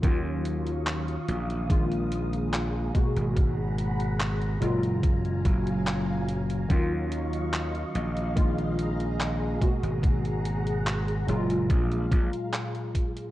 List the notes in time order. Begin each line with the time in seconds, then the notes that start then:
0.02 D#2 D#3 F#3 C#4 F4 F5 C#6 D#6, kick, closed hi-hat
0.45 closed hi-hat
0.67 closed hi-hat
0.87 clap, closed hi-hat
1.08 closed hi-hat
1.28 A#1, closed hi-hat
1.50 closed hi-hat
1.69 D#3 G#3 A#3 F4 G#4 A#5, kick, closed hi-hat
1.92 closed hi-hat
2.12 closed hi-hat
2.33 closed hi-hat
2.54 clap, closed hi-hat
2.94 B2 G#3 A#3 F#4 F#5 B5, kick, closed hi-hat
3.16 G#1, closed hi-hat
3.37 kick, closed hi-hat
3.78 closed hi-hat
4.00 closed hi-hat
4.20 clap, closed hi-hat
4.42 closed hi-hat
4.60 F#1 A#2 F#3 G#3 F4 F5 G#5, closed hi-hat
4.83 closed hi-hat
5.03 kick, closed hi-hat
5.25 closed hi-hat
5.45 F#1, kick, closed hi-hat
5.67 closed hi-hat
5.87 clap, closed hi-hat
6.29 closed hi-hat
6.50 closed hi-hat
6.68 D#2 D#3 F#3 C#4 F4 D#5 F5 C#6, kick, closed hi-hat
7.12 closed hi-hat
7.33 closed hi-hat
7.53 clap, closed hi-hat
7.75 closed hi-hat
7.95 A#1, closed hi-hat
8.17 closed hi-hat
8.35 D#3 G#3 A#3 F4 G#4 A#5, kick, closed hi-hat
8.58 closed hi-hat
8.79 closed hi-hat
9.00 closed hi-hat
9.20 clap, closed hi-hat
9.60 B2 G#3 A#3 F#4 F#5 A#5, kick, closed hi-hat
9.83 G#1, closed hi-hat
10.03 kick, closed hi-hat
10.25 closed hi-hat
10.45 closed hi-hat
10.67 closed hi-hat
10.87 clap, closed hi-hat
11.08 closed hi-hat
11.27 F#1 A#2 F#3 G#3 F4 F5, closed hi-hat
11.50 closed hi-hat
11.70 A#1, kick, closed hi-hat
11.92 closed hi-hat
12.12 A#1, kick, closed hi-hat
12.33 closed hi-hat
12.53 clap, closed hi-hat
12.75 closed hi-hat
12.95 kick, closed hi-hat
13.17 closed hi-hat